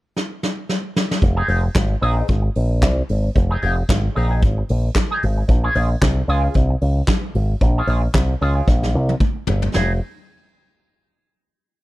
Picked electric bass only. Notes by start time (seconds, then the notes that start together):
1.22 F1
1.48 F1
1.76 G#1
2.02 A#1
2.29 G#1
2.56 A#1
2.82 C2
3.10 G#1
3.36 F1
3.63 F1
3.89 G#1
4.16 A#1
4.42 G#1
4.70 A#1
5.24 G#1
5.49 A#1
5.75 A#1
6.02 C2
6.28 C#2
6.56 C2
6.82 C#2
7.35 G#1
7.61 A#1
7.87 A#1
8.14 C2
8.41 C#2
8.67 A#1
8.95 C2
9.48 G1
9.75 F1